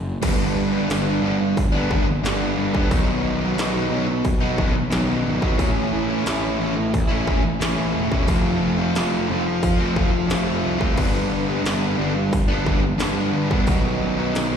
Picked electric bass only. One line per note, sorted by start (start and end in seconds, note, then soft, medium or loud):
0.00 0.16 F#1 medium
0.23 0.53 G1 medium
0.56 0.86 G2 medium
0.89 1.19 G1 medium
1.22 1.53 G1 loud
1.57 1.87 G1 medium
1.90 2.20 G1 medium
2.23 2.53 G1 medium
2.57 2.87 G2 medium
2.91 3.21 B1 medium
3.24 3.54 B1 medium
3.58 3.88 B1 medium
3.91 4.21 B1 medium
4.25 4.55 B2 loud
4.58 4.88 B1 medium
4.92 5.22 B1 loud
5.26 5.56 G#1 medium
5.59 5.89 A1 loud
5.93 6.23 A2 medium
6.27 6.57 A1 medium
6.60 6.90 A1 loud
6.94 7.24 A1 loud
7.27 7.57 A1 medium
7.61 7.91 A1 loud
7.94 8.24 E1 medium
8.28 8.58 F1 medium
8.62 8.92 F1 medium
8.95 9.25 F1 medium
9.30 9.59 F1 medium
9.63 9.93 F2 medium
9.97 10.27 F1 medium
10.30 10.60 F1 medium
10.64 10.94 C2 medium
10.98 11.28 G1 medium
11.31 11.61 G2 medium
11.64 11.95 G1 medium
11.98 12.29 G1 loud
12.33 12.63 G1 loud
12.66 12.97 G1 medium
12.99 13.30 G1 loud
13.33 13.64 G2 medium
13.67 13.98 B1 medium
14.01 14.32 B1 medium
14.35 14.57 B1 medium